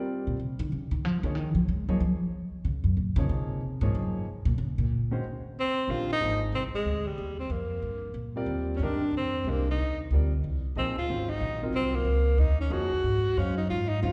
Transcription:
Already playing: grand piano G3 C4 F4 A#4 D5
0.27 upright bass A#2
0.40 upright bass C3
0.59 upright bass D#3
0.72 upright bass C#3
0.91 upright bass D#3
1.05 upright bass F3
1.23 upright bass D3, grand piano F3 A#3 D#4 G#4 C#5
1.35 upright bass D#3
1.55 upright bass F3
1.69 upright bass G#3
1.89 grand piano F3 A#3 D#4 G#4 C#5, upright bass F#3
2.00 upright bass F3
2.65 upright bass C#3
2.84 upright bass F#2
2.97 upright bass A#2
3.16 upright bass C#3, grand piano F3 A#3 D#4 G#4 C#5
3.29 upright bass C3
3.81 upright bass G#2, grand piano F3 A#3 D#4 G#4 C#5
3.95 upright bass F#2
4.45 upright bass A#2
4.58 upright bass C#3
4.78 upright bass A#2
5.11 grand piano D#3 G#3 C#4 F#4 C5
5.60 tenor saxophone C4
5.88 upright bass A#1, grand piano D#3 G#3 D4 G4 A#4, tenor saxophone F4
6.12 tenor saxophone D#4
6.20 upright bass G#1, grand piano F3 A#3 D#4 G#4 C5
6.52 upright bass C2, tenor saxophone C4
6.73 tenor saxophone G#3, muted upright bass stroke
6.85 upright bass D2
7.07 tenor saxophone G3
7.18 upright bass D#2
7.39 tenor saxophone C4
7.50 upright bass F2, tenor saxophone A#3
7.82 upright bass G2
8.14 upright bass A#2
8.36 grand piano G3 C4 F4 A#4 D5
8.46 upright bass D#2
8.76 upright bass G2, tenor saxophone C#4
8.83 grand piano D#3 G#3 D4 G4 A#4, tenor saxophone D4
9.11 upright bass F2
9.17 tenor saxophone C4
9.44 upright bass C2, grand piano G#3 D4 G4 C5 D#5
9.49 tenor saxophone A#3
9.70 tenor saxophone D#4
9.78 upright bass D#2
10.11 upright bass D2, grand piano G3 C4 F4 A#4 D5
10.44 upright bass C2
10.75 upright bass A#1, grand piano F3 A#3 D#4 G#4 D#5, tenor saxophone C4
10.97 tenor saxophone F4, muted upright bass stroke
11.09 upright bass G#1, grand piano D#3 G#3 C#4 F#4 C5
11.29 tenor saxophone D#4
11.41 upright bass A#1
11.62 grand piano F#3 C4 F4 A#4 D#5
11.73 upright bass C2, tenor saxophone C4
11.95 tenor saxophone A#3
12.05 upright bass C#2
12.38 upright bass D#2, tenor saxophone D#4
12.61 tenor saxophone C#4
12.70 upright bass F2, grand piano F3 A#3 D#4 G#4 C#5, tenor saxophone F#4
12.92 muted upright bass stroke
13.03 upright bass G#2
13.37 upright bass F#2, grand piano G#3 C#4 F#4 C5 F5, tenor saxophone C#4
13.57 tenor saxophone D#4
13.69 upright bass G#2, tenor saxophone F4
13.89 tenor saxophone D#4
14.02 upright bass F2, grand piano G#3 C#4 F#4 C5 F5, tenor saxophone F4

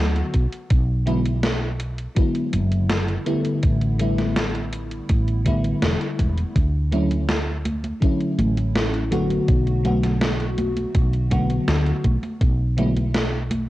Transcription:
Already playing: fretless electric bass D2, fm electric piano D3 F#3 A3 B3 F#4
0.16 closed hi-hat
0.34 fretless electric bass B1, kick, closed hi-hat
0.52 closed hi-hat
0.70 fretless electric bass B1, kick, closed hi-hat
1.06 fm electric piano D3 F#3 G#3 B3 E4, closed hi-hat
1.26 closed hi-hat
1.43 snare, closed hi-hat
1.80 closed hi-hat
1.98 closed hi-hat
2.15 fm electric piano D3 F#3 G#3 B3 E4, kick, closed hi-hat
2.35 closed hi-hat
2.53 fretless electric bass F#1, closed hi-hat
2.72 closed hi-hat
2.90 snare, closed hi-hat
3.08 closed hi-hat
3.26 fm electric piano D3 G3 A3 B3 E4, closed hi-hat
3.45 closed hi-hat
3.63 fretless electric bass A1, kick, closed hi-hat
3.81 closed hi-hat
3.98 fm electric piano D3 G3 A3 B3 E4, closed hi-hat
4.18 snare, closed hi-hat
4.36 snare, closed hi-hat
4.55 closed hi-hat
4.73 closed hi-hat
4.91 closed hi-hat
5.09 fretless electric bass A1, kick, closed hi-hat
5.28 closed hi-hat
5.45 fm electric piano D3 G3 A3 B3 E4, kick, closed hi-hat
5.64 closed hi-hat
5.82 fretless electric bass E1, snare, closed hi-hat
6.01 closed hi-hat
6.19 fretless electric bass E1, kick, closed hi-hat
6.38 closed hi-hat
6.56 fretless electric bass D2, kick, closed hi-hat, high conga
6.91 fm electric piano D3 F#3 A3 C#4 E4, closed hi-hat, high conga
7.11 closed hi-hat, high conga
7.29 snare, closed hi-hat, high conga
7.65 closed hi-hat, high conga
7.84 closed hi-hat, high conga
8.00 fm electric piano D3 F#3 A3 C#4 E4, kick, closed hi-hat, high conga
8.20 closed hi-hat
8.38 fretless electric bass A1, closed hi-hat, high conga
8.57 closed hi-hat, high conga
8.75 snare, closed hi-hat
8.94 closed hi-hat
9.11 fm electric piano D3 F#3 A3 B3 F#4, closed hi-hat, high conga
9.30 closed hi-hat, high conga
9.48 fretless electric bass B1, kick, closed hi-hat, high conga
9.67 closed hi-hat
9.83 fm electric piano D3 F#3 A3 B3 F#4, closed hi-hat, high conga
10.03 snare, closed hi-hat, high conga
10.21 snare, closed hi-hat, high conga
10.40 closed hi-hat
10.58 closed hi-hat, high conga
10.77 closed hi-hat, high conga
10.95 fretless electric bass B1, kick, closed hi-hat, high conga
11.13 closed hi-hat
11.30 fm electric piano D3 F#3 A3 B3 F#4, kick, closed hi-hat, high conga
11.50 closed hi-hat, high conga
11.68 fretless electric bass D2, snare, closed hi-hat, high conga
11.86 closed hi-hat
12.04 fretless electric bass B1, kick, closed hi-hat, high conga
12.23 closed hi-hat, high conga
12.41 fretless electric bass B1, kick, closed hi-hat, high conga
12.77 fm electric piano D3 F#3 G#3 B3 E4, closed hi-hat, high conga
12.97 closed hi-hat, high conga
13.14 snare, closed hi-hat, high conga
13.51 closed hi-hat, high conga

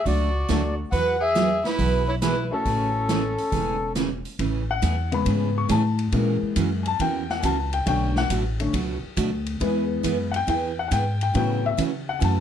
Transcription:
0.06 upright bass C#2, steel-string acoustic guitar D3 F#3 A3 D4 F#4, fiddle F#4, accordion D5, kick, open hi-hat
0.49 upright bass D2, steel-string acoustic guitar D3 F#3 A3 D4 F#4, upright piano F#3 A3 D4 F#4 A4, snare, closed hi-hat
0.91 upright bass E2, steel-string acoustic guitar E3 F#3 B3 F#4 G#4, fiddle B4, accordion F#5, kick, open hi-hat
1.20 fiddle G#4, accordion E5
1.35 steel-string acoustic guitar E3 F#3 B3 F#4 G#4, snare, closed hi-hat
1.65 fiddle E4, accordion B4, snare, open hi-hat
1.79 upright bass B1, steel-string acoustic guitar E3 F#3 B3 F#4 G#4, kick, open hi-hat
2.08 fiddle E4, accordion C#5
2.22 steel-string acoustic guitar E3 F#3 B3 F#4 G#4, fiddle E4, accordion B4, snare, closed hi-hat
2.51 upright piano A3 C#4 E4 F#4 A4, fiddle C#4, accordion A4
2.65 upright bass A1, steel-string acoustic guitar C#3 E3 A3 C#4 G#4, kick, open hi-hat
3.09 steel-string acoustic guitar C#3 E3 A3 C#4 G#4, snare, closed hi-hat
3.38 open hi-hat
3.52 upright bass E1, steel-string acoustic guitar C#3 E3 A3 C#4 G#4, kick, open hi-hat
3.95 steel-string acoustic guitar C#3 E3 A3 C#4 G#4, snare, closed hi-hat
4.25 open hi-hat
4.39 upright bass A1, steel-string acoustic guitar C#3 E3 A3 C#4 G#4, kick, ride
4.71 upright piano F#5
4.82 upright bass E2, steel-string acoustic guitar C#3 E3 A3 C#4 G#4, kick, hi-hat pedal, ride
5.12 upright piano C#3 G#3 B3 B5, ride
5.26 upright bass G#2, steel-string acoustic guitar C#3 E3 A3 C#4 G#4, kick, ride
5.58 upright piano C#6
5.69 upright bass A2, steel-string acoustic guitar C#3 E3 A3 C#4 G#4, upright piano A5, kick, hi-hat pedal, ride
5.99 ride
6.12 upright bass A#2, steel-string acoustic guitar E3 A#3 C#4 F#4 A#4, upright piano E3 G#3 A#3, kick, ride
6.43 muted upright bass stroke
6.56 upright bass F#2, steel-string acoustic guitar E3 A#3 C#4 F#4 A#4, kick, hi-hat pedal, ride
6.83 upright piano G#5, ride
6.88 upright piano A5
6.99 upright bass E2, steel-string acoustic guitar E3 A#3 C#4 F#4 A#4, upright piano G5, kick, ride
7.30 upright piano F#5, snare
7.40 upright bass C#2, steel-string acoustic guitar E3 A#3 C#4 F#4 A#4, upright piano G#5, kick, hi-hat pedal, ride
7.45 upright piano A5
7.73 upright piano G5, ride
7.86 upright bass B1, steel-string acoustic guitar B2 F#3 A3 D4 F#4, upright piano D3 A3 C#4 G5, kick, ride
8.16 upright piano F#5, snare
8.30 upright bass A1, steel-string acoustic guitar B2 F#3 A3 D4 F#4, kick, hi-hat pedal, ride
8.60 upright piano D3 A3 C#4, ride
8.73 upright bass C#2, steel-string acoustic guitar B2 F#3 A3 D4 F#4, kick, ride
9.03 muted upright bass stroke
9.17 upright bass D2, steel-string acoustic guitar B2 F#3 A3 D4 F#4, kick, hi-hat pedal, ride
9.46 ride
9.60 upright bass E2, steel-string acoustic guitar E3 B3 E4 G#4, upright piano E3 G#3 B3, kick, ride
10.03 upright bass F#2, steel-string acoustic guitar E3 B3 E4 G#4, kick, hi-hat pedal, ride
10.32 upright piano F#5, ride
10.36 upright piano G5
10.47 upright bass E2, steel-string acoustic guitar E3 B3 E4 G#4, upright piano G5, kick, ride
10.79 upright piano F#5
10.88 upright bass G#2, steel-string acoustic guitar E3 B3 E4 G#4, upright piano F#5, kick, hi-hat pedal, ride
10.93 upright piano G5
11.21 upright piano G5, ride
11.34 upright bass A2, steel-string acoustic guitar C#3 E3 A3 C#4 F#4, upright piano C#3 F#3 B3 G5, kick, ride
11.66 upright piano E5
11.77 steel-string acoustic guitar C#3 E3 A3 C#4 F#4, upright bass C#3, kick, hi-hat pedal, ride
12.09 upright piano F#5
12.19 upright bass F#2, steel-string acoustic guitar C#3 E3 A3 C#4 F#4, upright piano G#5, kick, ride
12.24 upright piano A5

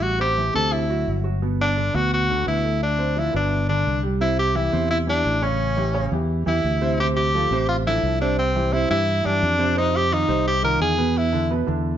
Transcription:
Already playing: fingered electric bass A1, grand piano G3 G4
0.02 tenor saxophone F#4
0.20 grand piano C4 C5, tenor saxophone G4
0.37 grand piano E3 E4
0.54 fingered electric bass D2, grand piano C3 C4, tenor saxophone A4
0.73 tenor saxophone E4
0.90 grand piano F#3 F#4
1.08 fingered electric bass G1
1.24 grand piano F#3 F#4
1.42 grand piano B2 B3
1.61 tenor saxophone D4
1.76 grand piano D3 D4
1.94 fingered electric bass D2, grand piano B2 B3, tenor saxophone F#4
2.14 tenor saxophone F#4
2.29 grand piano D3 D4
2.46 fingered electric bass D2, grand piano B2 B3, tenor saxophone E4
2.64 grand piano A3 A4
2.83 tenor saxophone D4
2.99 grand piano C4 C5
3.16 grand piano F3 F4, tenor saxophone E4
3.33 fingered electric bass G1, grand piano B2 B3, tenor saxophone D4
3.69 grand piano D3 D4, tenor saxophone D4
3.87 fingered electric bass C2
4.03 grand piano G3 G4
4.21 grand piano C3 C4 C5, tenor saxophone E4
4.39 tenor saxophone G4
4.55 grand piano E3 E4 G4, tenor saxophone E4
4.73 fingered electric bass E2, grand piano C3 C4 C5
4.90 tenor saxophone E4
5.07 grand piano E3 E4 G4, tenor saxophone D4
5.25 fingered electric bass A1
5.42 grand piano C#3 C#4 C#5, tenor saxophone C#4
5.77 grand piano E3 E4 G4
5.94 grand piano C#3 C#4 C#5
6.12 fingered electric bass E2, grand piano E3 E4 G4
6.46 fingered electric bass E2, grand piano E3 E4 G4, tenor saxophone E4
6.64 fingered electric bass D2
6.81 grand piano C3 C4 C5
7.00 grand piano C3 C4 C5, tenor saxophone G4
7.16 tenor saxophone G4
7.34 grand piano F3 F4 A4
7.51 fingered electric bass A1, grand piano C3 C4 C5
7.69 tenor saxophone F4
7.86 grand piano F3 D4 A4, tenor saxophone E4
8.03 fingered electric bass C2
8.21 grand piano C3 C4 C5, tenor saxophone D4
8.39 tenor saxophone C4
8.55 grand piano E3 E4 G4
8.72 grand piano C3 C4 C5, tenor saxophone E4
8.90 fingered electric bass G2, grand piano E3 E4 G4, tenor saxophone E4
9.24 fingered electric bass G2, grand piano E3 E4 G4, tenor saxophone D4
9.43 fingered electric bass F2
9.58 grand piano C3 C4 C5
9.76 grand piano C3 C4 C5, tenor saxophone D#4
9.96 tenor saxophone G4
10.11 grand piano D#3 D#4 F4, tenor saxophone D#4
10.28 fingered electric bass C2, grand piano C3 C4 C5
10.47 tenor saxophone G4
10.63 grand piano D#3 D#4 F4, tenor saxophone A#4
10.81 fingered electric bass E2, tenor saxophone G#4
10.98 grand piano B2 B3 B4
11.17 tenor saxophone E4
11.33 grand piano D3 D4 E4
11.50 grand piano B2 B3 B4
11.67 fingered electric bass E2, grand piano D3 D4 E4

